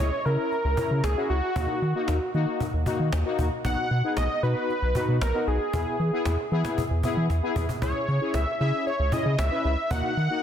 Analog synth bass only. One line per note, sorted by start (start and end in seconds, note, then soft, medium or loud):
0.00 0.11 C#2 medium
0.26 0.37 C#3 loud
0.65 0.76 C#2 loud
0.91 1.02 C#3 medium
1.04 1.15 C#2 loud
1.30 1.41 C#2 loud
1.56 1.67 D#2 loud
1.82 1.93 D#3 medium
2.08 2.19 D#2 loud
2.34 2.46 D#3 loud
2.73 2.85 D#2 medium
3.00 3.11 D#3 loud
3.13 3.24 D#2 loud
3.39 3.50 D#2 loud
3.65 3.76 B1 loud
3.91 4.02 B2 loud
4.17 4.28 B1 loud
4.43 4.54 B2 loud
4.82 4.93 B1 loud
5.08 5.19 B2 loud
5.21 5.32 B1 loud
5.47 5.58 B1 loud
5.73 5.85 E2 loud
6.00 6.11 E3 medium
6.26 6.37 E2 loud
6.52 6.63 E3 medium
6.91 7.02 E2 loud
7.17 7.28 E3 loud
7.30 7.41 E2 loud
7.56 7.67 E2 loud
7.82 7.93 C#2 loud
8.08 8.19 C#3 loud
8.34 8.45 C#2 loud
8.60 8.72 C#3 loud
8.99 9.11 C#2 loud
9.26 9.37 C#3 loud
9.39 9.50 C#2 loud
9.65 9.76 C#2 loud
9.91 10.02 D#2 loud
10.17 10.28 D#3 medium